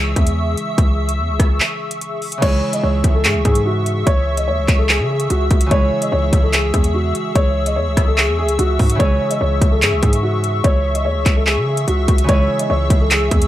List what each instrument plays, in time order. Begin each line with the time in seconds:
Already playing: 808-style bass C#2, harp C#3 E3 G#3 E4 G#4, analog synth pad G#4 E5 C#6 E6
0.16 808-style bass E2, kick, closed hi-hat
0.27 closed hi-hat
0.57 closed hi-hat
0.78 808-style bass C#2, kick, closed hi-hat
1.09 closed hi-hat
1.19 808-style bass E2
1.29 808-style bass C#2
1.40 808-style bass C#2, kick, cross-stick, closed hi-hat
1.60 clap
1.91 closed hi-hat
2.01 closed hi-hat
2.22 open hi-hat
2.32 closed hi-hat
2.38 harp C#3 E3
2.42 808-style bass C#2, harp G#3 E4, analog synth pad G#4 E5 C#6 E6, grand piano C#5, kick, closed hi-hat, crash
2.47 harp G#4
2.73 grand piano D#5, closed hi-hat
2.83 808-style bass C#2, grand piano C#5
3.04 808-style bass C#2, kick, closed hi-hat
3.14 grand piano A4
3.24 808-style bass G#2, grand piano G#4, clap, closed hi-hat
3.35 808-style bass C#2
3.45 808-style bass G#2, grand piano G#4, kick, closed hi-hat
3.55 closed hi-hat
3.66 grand piano F#4
3.86 closed hi-hat
4.07 808-style bass C#2, grand piano C#5, kick, closed hi-hat
4.37 grand piano D#5, closed hi-hat
4.48 808-style bass D#2, grand piano C#5
4.58 808-style bass C#2
4.68 808-style bass C#2, kick, clap, closed hi-hat
4.78 grand piano A4
4.89 grand piano G#4, clap
4.99 808-style bass C#3
5.09 grand piano G#4
5.20 closed hi-hat
5.30 808-style bass C#2, grand piano F#4, closed hi-hat
5.51 808-style bass C#2, kick, closed hi-hat
5.61 closed hi-hat
5.66 harp C#3 E3
5.71 808-style bass C#2, harp G#3 E4, grand piano C#5, analog synth pad E5 C#6, kick, closed hi-hat
5.76 harp G#4
6.02 grand piano D#5, closed hi-hat
6.12 808-style bass C#2, grand piano C#5
6.33 808-style bass C#2, kick, closed hi-hat
6.43 grand piano A4
6.53 grand piano G#4, clap, closed hi-hat
6.74 808-style bass E2, grand piano G#4, kick, closed hi-hat
6.84 closed hi-hat
6.94 grand piano F#4
7.15 closed hi-hat
7.35 808-style bass C#2, grand piano C#5, kick, closed hi-hat
7.66 grand piano D#5, closed hi-hat
7.76 808-style bass E2, grand piano C#5
7.87 808-style bass C#2
7.97 808-style bass C#2, kick, cross-stick, closed hi-hat
8.07 grand piano A4
8.17 grand piano G#4, clap
8.28 808-style bass E2
8.39 grand piano G#4
8.43 808-style bass C#2
8.49 closed hi-hat
8.59 808-style bass C#2, grand piano F#4, closed hi-hat
8.79 808-style bass G#2, kick, open hi-hat
8.90 closed hi-hat
8.95 harp C#3 E3
9.00 808-style bass C#2, harp G#3 E4, grand piano C#5, kick, closed hi-hat
9.04 harp G#4
9.30 grand piano D#5, closed hi-hat
9.41 808-style bass C#2, grand piano C#5
9.61 808-style bass C#2, kick, closed hi-hat
9.72 grand piano A4
9.82 808-style bass G#2, grand piano G#4, clap, closed hi-hat
9.92 808-style bass C#2
10.02 808-style bass G#2, grand piano G#4, kick, closed hi-hat
10.13 closed hi-hat
10.23 grand piano F#4
10.44 closed hi-hat
10.64 808-style bass C#2, grand piano C#5, kick, closed hi-hat
10.95 grand piano D#5, closed hi-hat
11.05 808-style bass D#2, grand piano C#5
11.16 808-style bass C#2
11.26 808-style bass C#2, kick, clap, closed hi-hat
11.36 grand piano A4
11.47 grand piano G#4, clap
11.57 808-style bass C#3
11.67 grand piano G#4
11.77 closed hi-hat
11.87 808-style bass C#2, grand piano F#4, closed hi-hat
12.08 808-style bass C#2, kick, closed hi-hat
12.18 closed hi-hat
12.24 harp C#3 E3
12.29 808-style bass C#2, harp G#3 E4, analog synth pad G#4 E6, grand piano C#5, kick, closed hi-hat
12.33 harp G#4
12.59 grand piano D#5, closed hi-hat
12.70 808-style bass C#2, grand piano C#5
12.90 808-style bass C#2, kick, closed hi-hat
13.01 grand piano A4
13.11 grand piano G#4, clap, closed hi-hat
13.31 808-style bass E2, grand piano G#4, kick, closed hi-hat
13.42 closed hi-hat